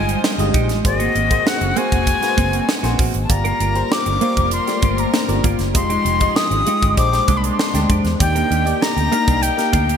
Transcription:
Already playing: fingered electric bass G1, string section F3 D#4 F4 C5, fm electric piano G3 G#3 F4 G4 D5 D#5, flute G#5
0.07 clean electric guitar G#3 D#4 G4, closed hi-hat
0.23 muted clean electric guitar stroke, snare
0.38 fingered electric bass G1, fm electric piano G#3 F4 G4 D#5, muted clean electric guitar stroke, closed hi-hat
0.54 fingered electric bass A#1, clean electric guitar G#3 D#4 G4, kick, closed hi-hat
0.69 fingered electric bass A1, muted clean electric guitar stroke, snare, closed hi-hat
0.84 fingered electric bass G#1, string section G#3 C4 F#4, fm electric piano A#3 F#4 G#4 C5, flute D#5, muted clean electric guitar stroke, kick, closed hi-hat
1.00 clean electric guitar A#3 C4 F#4, closed hi-hat
1.15 fingered electric bass G#1, clean electric guitar A#3 C4 F#4, closed hi-hat
1.30 fm electric piano A#3 F#4 G#4 C5, muted clean electric guitar stroke, kick, closed hi-hat
1.46 flute F#5, muted clean electric guitar stroke, snare
1.61 fingered electric bass F#1, muted clean electric guitar stroke, closed hi-hat
1.76 fm electric piano A#3 F#4 G#4 C5, clean electric guitar A#3 C4 F#4, flute G#5, closed hi-hat
1.92 fingered electric bass F1, clean electric guitar A#3 C4 F#4, kick, closed hi-hat
2.07 muted clean electric guitar stroke, kick, closed hi-hat
2.21 fm electric piano A#3 F#4 G#4 B4, muted clean electric guitar stroke, snare, closed hi-hat
2.29 fm electric piano C5
2.37 fingered electric bass F#1, clean electric guitar A#3 C4 F#4, kick, closed hi-hat
2.52 clean electric guitar A#3 C4 F#4, closed hi-hat
2.68 muted clean electric guitar stroke, snare
2.83 fingered electric bass A#1, fm electric piano A#3 F#4 G#4 C5, clean electric guitar A#3 C4 F#4, snare, closed hi-hat
2.98 fingered electric bass A1, clean electric guitar A#3 C4 F#4, kick, open hi-hat
3.14 fingered electric bass G#1, muted clean electric guitar stroke, closed hi-hat
3.24 flute A5
3.29 fingered electric bass G1, string section G3 F4 A#4, fm electric piano A#3 F4 G4 D5, flute A#5, muted clean electric guitar stroke, kick, closed hi-hat
3.44 clean electric guitar A#3 F4 A#4, closed hi-hat
3.60 fingered electric bass G1, clean electric guitar A#3 F4 G4, closed hi-hat
3.75 fm electric piano A#3 F4 G4 C5, muted clean electric guitar stroke, closed hi-hat
3.91 flute D6, muted clean electric guitar stroke, snare
4.06 fingered electric bass G1, muted clean electric guitar stroke, closed hi-hat
4.21 fm electric piano A#3 F4 G4 C5, clean electric guitar A#3 F4 G4, closed hi-hat
4.36 fingered electric bass F1, clean electric guitar A#3 F4 G4, kick, closed hi-hat
4.51 flute C6, muted clean electric guitar stroke, closed hi-hat
4.67 fm electric piano A3 F4 G4 D5, muted clean electric guitar stroke, snare, closed hi-hat
4.73 fm electric piano A#3
4.82 fingered electric bass G1, clean electric guitar A#3 F4 G4, kick, closed hi-hat
4.98 clean electric guitar A#3 F4 G4, flute A#5, closed hi-hat
5.13 muted clean electric guitar stroke, snare
5.28 fingered electric bass G1, fm electric piano A#3 F4 G4 D5, muted clean electric guitar stroke, closed hi-hat
5.44 fingered electric bass G1, clean electric guitar A#3 F4 G4, kick, closed hi-hat
5.59 fingered electric bass F#1, muted clean electric guitar stroke, snare, closed hi-hat
5.74 fingered electric bass F1, string section F3 G#3 D#4 G4, fm electric piano G#3 F4 G4 D#5, flute C6, muted clean electric guitar stroke, kick, closed hi-hat
5.90 clean electric guitar G#3 D#4 G4, closed hi-hat
6.05 fingered electric bass F1, clean electric guitar G#3 D#4 G4, closed hi-hat
6.20 fm electric piano G#3 F4 G4 D#5, muted clean electric guitar stroke, kick, closed hi-hat
6.36 flute D#6, muted clean electric guitar stroke, snare
6.51 fingered electric bass G#1, muted clean electric guitar stroke, closed hi-hat
6.66 fm electric piano G#3 F4 G4 D#5, clean electric guitar G#3 D#4 G4, closed hi-hat
6.82 fingered electric bass G1, clean electric guitar G#3 D#4 G4, kick, closed hi-hat
6.97 fingered electric bass A#1, fm electric piano G#3 D4 G4 C5, string section G#3 A#3 D4, flute D6, kick, closed hi-hat
7.12 fm electric piano G#3 D4 G4 C5, muted clean electric guitar stroke, snare, closed hi-hat
7.28 fingered electric bass C2, clean electric guitar G#3 D4 G4, kick, closed hi-hat
7.37 flute B5
7.43 clean electric guitar G#3 D4 G4, flute C6, closed hi-hat
7.59 muted clean electric guitar stroke, snare
7.74 fingered electric bass D2, fm electric piano G#3 D4 G4 D5, clean electric guitar G#3 D4 G4, snare, closed hi-hat
7.90 fingered electric bass F2, clean electric guitar G#3 D4 G4, kick, closed hi-hat
8.04 fingered electric bass E2, muted clean electric guitar stroke, snare, closed hi-hat
8.19 fingered electric bass D#2, fm electric piano A#3 D#4 G4 D5, string section A#3 D#4 G4, flute G5, muted clean electric guitar stroke, kick, closed hi-hat
8.35 clean electric guitar A#3 D4 A#4, closed hi-hat
8.50 fingered electric bass D#2, clean electric guitar A#3 D4 G4, closed hi-hat
8.65 fm electric piano A#3 D#4 G4 D5, muted clean electric guitar stroke, closed hi-hat
8.81 flute A#5, muted clean electric guitar stroke, snare
8.96 fingered electric bass D2, muted clean electric guitar stroke, closed hi-hat
9.11 fm electric piano A#3 D#4 G4 F5, clean electric guitar A#3 D4 G4, closed hi-hat
9.27 fingered electric bass C2, clean electric guitar A#3 D4 G4, kick, closed hi-hat
9.42 flute G5, muted clean electric guitar stroke, closed hi-hat
9.57 fm electric piano A#3 D#4 G4 A#4, muted clean electric guitar stroke, snare, closed hi-hat
9.73 fingered electric bass D2, clean electric guitar A#3 D4 G4, kick, closed hi-hat
9.88 clean electric guitar A#3 D4 G4, closed hi-hat

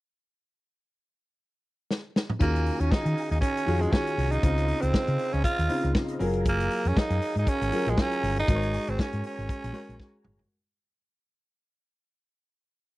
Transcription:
1.91 snare
2.16 snare
2.30 mid tom
2.39 fingered electric bass D#2, grand piano D#3 C#4 F4 F#4 G#4, tenor saxophone A#3, tonewheel organ G#4 F5 G#5 A#5, kick, closed hi-hat
2.56 closed hi-hat
2.66 open hi-hat
2.80 fingered electric bass D#2, tenor saxophone C#4, closed hi-hat
2.92 tenor saxophone D#4, kick, snare
3.05 fingered electric bass D#3, closed hi-hat
3.18 open hi-hat
3.31 fingered electric bass D#2, tenor saxophone D#4, closed hi-hat
3.41 tenor saxophone C#4, kick, closed hi-hat
3.57 closed hi-hat
3.66 fingered electric bass F2, grand piano D#3 C#4 F4 F#4 G#4, open hi-hat
3.81 tenor saxophone G#3, closed hi-hat
3.93 tenor saxophone C#4, kick, snare
4.07 closed hi-hat
4.18 fingered electric bass C2, open hi-hat
4.31 tenor saxophone D#4, closed hi-hat
4.42 fingered electric bass C#2, grand piano C#3 C4 D#4 F4, tonewheel organ C5 D#5, kick, closed hi-hat
4.58 closed hi-hat
4.68 open hi-hat
4.81 fingered electric bass C#2, tenor saxophone C4, closed hi-hat
4.94 kick, snare
5.07 fingered electric bass C#3, closed hi-hat
5.19 open hi-hat
5.33 fingered electric bass C#2, tenor saxophone C#4, closed hi-hat
5.44 tenor saxophone F4, kick, closed hi-hat
5.59 fingered electric bass D#2, closed hi-hat
5.69 grand piano C#3 C4 D#4 F4, open hi-hat
5.84 fingered electric bass C#2, closed hi-hat
5.95 kick, snare
6.08 closed hi-hat
6.19 fingered electric bass F#1, grand piano F#3 F4 G#4 A#4, tonewheel organ G#4 G#5 A#5, open hi-hat
6.33 closed hi-hat
6.45 tenor saxophone A#3, kick, closed hi-hat
6.60 closed hi-hat
6.71 open hi-hat
6.85 fingered electric bass F2, tenor saxophone C#4, closed hi-hat
6.97 tenor saxophone D#4, kick, snare
7.10 fingered electric bass F#2, closed hi-hat
7.22 open hi-hat
7.36 fingered electric bass G#2, tenor saxophone D#4, closed hi-hat
7.47 tenor saxophone C#4, kick, closed hi-hat
7.61 fingered electric bass G#1, closed hi-hat
7.71 grand piano F#3 F4 G#4 A#4, open hi-hat
7.87 fingered electric bass A#1, tenor saxophone G#3, closed hi-hat
7.98 tenor saxophone C#4, kick, snare
8.12 closed hi-hat
8.23 fingered electric bass G1, open hi-hat
8.36 tenor saxophone D#4, closed hi-hat
8.48 fingered electric bass G#1, grand piano G#3 F#4 A#4 C5, tonewheel organ C#5, kick, closed hi-hat
8.55 grand piano C#5
8.63 closed hi-hat
8.74 open hi-hat
8.88 fingered electric bass G#1, tenor saxophone C4, closed hi-hat
8.99 tenor saxophone C#4, muted fingered electric bass stroke, kick, snare
9.13 fingered electric bass G#2, closed hi-hat
9.24 tenor saxophone C#4, open hi-hat
9.39 fingered electric bass G#1, closed hi-hat
9.49 kick, closed hi-hat
9.64 fingered electric bass A#1, closed hi-hat
9.72 grand piano G#3 F#4 A#4 C#5, open hi-hat
9.89 fingered electric bass A#1, closed hi-hat
10.00 kick, snare
10.24 fingered electric bass G1, mid tom
10.39 floor tom

